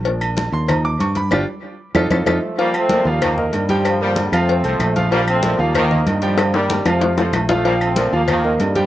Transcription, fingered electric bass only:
X:1
M:4/4
L:1/8
Q:1/4=190
K:Bb
V:1 name="Fingered electric bass" clef=bass
B,,,3 E,,3 G,,2 | G,,, z3 F,, F,, F,, z | z3 E,,3 G,,2- | G,,3 F,,2 C,, B,,,2- |
B,,,3 E,,3 G,,2- | G,,3 F,,3 B,,,2- | B,,,3 E,,3 G,,2 |]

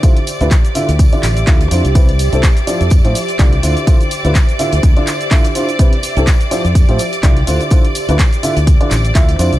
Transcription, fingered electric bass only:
X:1
M:4/4
L:1/16
Q:"Swing 16ths" 1/4=125
K:Dm
V:1 name="Fingered electric bass" clef=bass
z3 D,, z3 D,,2 z A,,,2 D,,2 F,, C,,- | C,,3 C,, z3 F,,2 A,, z2 C,,2 D,, z | z3 D,, z3 D,, D,, z6 z | z3 C,, z3 F,,2 A,, z2 C,,2 D,, z |
z3 D,, z3 D,,2 z A,,,2 D,,2 F,, C,, |]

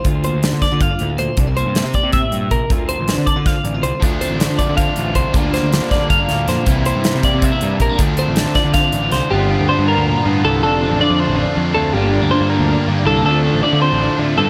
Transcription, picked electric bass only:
X:1
M:7/8
L:1/16
Q:1/4=159
K:Dm
V:1 name="Picked electric bass" clef=bass
D,,3 D,,2 D, z D,2 z D,,2 D,, z | C,,3 G,,2 C, z C,2 z G,,2 B,,, z | D,,3 A,,,2 D, z D,2 z A,,,2 C,, z | D,,3 A,,,2 D, z D,2 z A,,,2 C,, z |
D,,3 D,,2 D, z D,2 z D,,2 F,, z | C,,3 G,,2 C, z C,2 z G,,2 B,,, z | D,,3 A,,,2 D, z D,2 z A,,,2 C,, z | G,,,3 D,, z G,,2 D,,2 z G,,2 C,,2 |
F,,,3 A,,, z F,,2 A,,,2 z F,,2 D,,2 | G,,,3 D,, z G,,2 D,,2 z G,,2 C,,2 | D,,3 A,,, z D,2 A,,,2 z D,2 G,,2 |]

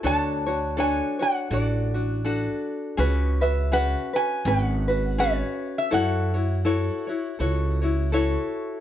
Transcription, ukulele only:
X:1
M:4/4
L:1/8
Q:"Swing" 1/4=82
K:F#m
V:1 name="Ukulele"
[DFAc] [DFc] [DFAc] [DFc] [DFA] [DF] [DFA]2 | [CFGB] [CFB] [CFGB] [CFB] [CFGB] [CFB] [CFGB]2 | [EFAc] [EFc] [EFAc] [EFc] [EFAc] [EFc] [EFAc]2 |]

